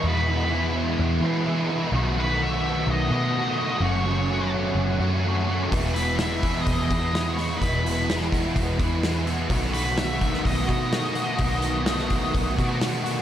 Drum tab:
HH |----------------|----------------|----------------|o-o-o-o-o-o-o-o-|
SD |----------------|----------------|----------------|----o-------o---|
BD |----------------|----------------|----------------|o-----o-o-o-----|

HH |o-o-o-o-o-o-o-o-|o-o-o-o-o-o-o-o-|o-o-o-o-o-o-o-o-|
SD |----oo------o---|----o--o----o---|----oo------o---|
BD |o-----o-o-o-----|o-----o-o-o-----|o-----o-o-o-----|